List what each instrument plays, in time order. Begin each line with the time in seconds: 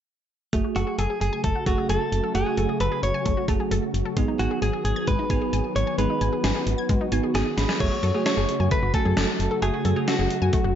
0.53 fm bass F#1, string machine C#3 F#3 A3 F#4, tine electric piano A3 F#4 G#4, synth arpeggio sound A3, kick, closed hi-hat
0.64 synth arpeggio sound F#4
0.76 fm bass F#1, clean electric guitar F#4, synth arpeggio sound A4, closed hi-hat
0.87 synth arpeggio sound G#4
0.99 fm bass F#1, clean electric guitar G#4, synth arpeggio sound A4, closed hi-hat
1.10 synth arpeggio sound G#4
1.21 fm bass F#1, clean electric guitar G#4, closed hi-hat
1.33 synth arpeggio sound G#5
1.44 fm bass F#1, synth arpeggio sound A3, clean electric guitar A4, kick, closed hi-hat
1.55 synth arpeggio sound F#4
1.66 fm bass F#1, tine electric piano A3 F#4 G#4, clean electric guitar F#4, synth arpeggio sound A4, kick, closed hi-hat
1.78 synth arpeggio sound G#4
1.89 fm bass F#1, synth arpeggio sound A4, clean electric guitar A4, closed hi-hat
2.12 fm bass F#1, closed hi-hat
2.24 synth arpeggio sound A4
2.35 fm bass F#1, synth arpeggio sound A3, tine electric piano A3 F#4 G#4, clean electric guitar G#4, closed hi-hat
2.46 synth arpeggio sound F#4
2.57 fm bass F#1, synth arpeggio sound A4, closed hi-hat
2.69 synth arpeggio sound G#4
2.80 fm bass F#1, synth arpeggio sound A4, clean electric guitar B4, closed hi-hat
2.92 synth arpeggio sound G#4
3.03 fm bass F#1, clean electric guitar C#5, closed hi-hat
3.14 synth arpeggio sound G#5
3.26 fm bass F#1, synth arpeggio sound A3, kick, closed hi-hat
3.37 synth arpeggio sound F#4
3.48 fm bass F#1, tine electric piano A3 F#4 G#4, synth arpeggio sound A4, kick, closed hi-hat
3.60 synth arpeggio sound G#4
3.71 fm bass F#1, synth arpeggio sound A4, closed hi-hat
3.94 fm bass F#1, closed hi-hat
4.05 synth arpeggio sound A4
4.17 fm bass G#1, string machine D#3 B3 G#4, synth arpeggio sound G#3, tine electric piano B3 D#4 G#4, kick, closed hi-hat
4.28 synth arpeggio sound D#4
4.39 fm bass G#1, clean electric guitar F#4, synth arpeggio sound G#5, closed hi-hat
4.51 synth arpeggio sound G#4
4.62 fm bass G#1, clean electric guitar G#4, synth arpeggio sound G#5, closed hi-hat
4.73 synth arpeggio sound G#4
4.85 fm bass G#1, clean electric guitar G#4, closed hi-hat
4.96 synth arpeggio sound G#6
5.07 fm bass G#1, synth arpeggio sound G#3, clean electric guitar B4, kick, closed hi-hat
5.19 synth arpeggio sound D#4
5.30 fm bass G#1, tine electric piano B3 D#4 G#4, synth arpeggio sound G#5, kick, closed hi-hat
5.42 synth arpeggio sound G#4
5.53 fm bass G#1, synth arpeggio sound G#5, closed hi-hat
5.76 fm bass G#1, clean electric guitar C#5, closed hi-hat
5.87 synth arpeggio sound G#5
5.98 fm bass G#1, synth arpeggio sound G#3, tine electric piano B3 D#4 G#4, string machine F#4, clean electric guitar B4, closed hi-hat
6.10 synth arpeggio sound D#4
6.21 fm bass G#1, synth arpeggio sound G#5, closed hi-hat
6.33 synth arpeggio sound G#4
6.44 fm bass G#1, synth arpeggio sound G#5, snare, closed hi-hat
6.55 synth arpeggio sound G#4
6.67 fm bass G#1, closed hi-hat
6.78 synth arpeggio sound G#6
6.89 fm bass G#1, synth arpeggio sound G#3, kick, closed hi-hat
7.01 synth arpeggio sound D#4
7.12 fm bass G#1, tine electric piano B3 D#4 F#4, synth arpeggio sound G#5, closed hi-hat
7.23 synth arpeggio sound G#4
7.35 fm bass G#1, clean electric guitar G#4, synth arpeggio sound G#5, tine electric piano G#5, snare, closed hi-hat
7.58 fm bass G#1, tine electric piano B5, snare, closed hi-hat
7.69 synth arpeggio sound G#5, snare
7.80 fm bass F#1, string machine C#3 F#3 A3 F#4, synth arpeggio sound A3, tine electric piano A3 F#4 G#4, clean electric guitar C#5, kick, closed hi-hat, crash
7.92 synth arpeggio sound F#4
8.03 fm bass F#2, synth arpeggio sound A4, closed hi-hat
8.14 tine electric piano A3 F#4 G#4, synth arpeggio sound G#4
8.26 synth arpeggio sound A4, clean electric guitar C#5, snare, closed hi-hat
8.37 fm bass F#1, synth arpeggio sound G#4
8.49 closed hi-hat
8.60 fm bass F#2, synth arpeggio sound G#5
8.71 synth arpeggio sound A3, clean electric guitar B4, kick, closed hi-hat
8.83 fm bass F#1, synth arpeggio sound F#4
8.94 tine electric piano A3 F#4 G#5, synth arpeggio sound A4, clean electric guitar A4, kick, closed hi-hat
9.05 fm bass F#2, synth arpeggio sound G#4
9.17 fm bass F#1, synth arpeggio sound A4, snare, closed hi-hat
9.40 fm bass F#1, closed hi-hat
9.51 synth arpeggio sound A4
9.62 fm bass F#1, synth arpeggio sound A3, tine electric piano A3 F#4 G#4, clean electric guitar G#4, closed hi-hat
9.74 synth arpeggio sound F#4
9.85 fm bass F#2, synth arpeggio sound A4, closed hi-hat
9.96 tine electric piano A3 F#4 G#4, synth arpeggio sound G#4
10.08 clean electric guitar F#4, synth arpeggio sound A4, snare, closed hi-hat
10.19 fm bass F#1, synth arpeggio sound G#4
10.30 closed hi-hat
10.42 fm bass F#2, synth arpeggio sound G#5
10.53 synth arpeggio sound A3, kick, closed hi-hat
10.64 fm bass F#1, synth arpeggio sound F#4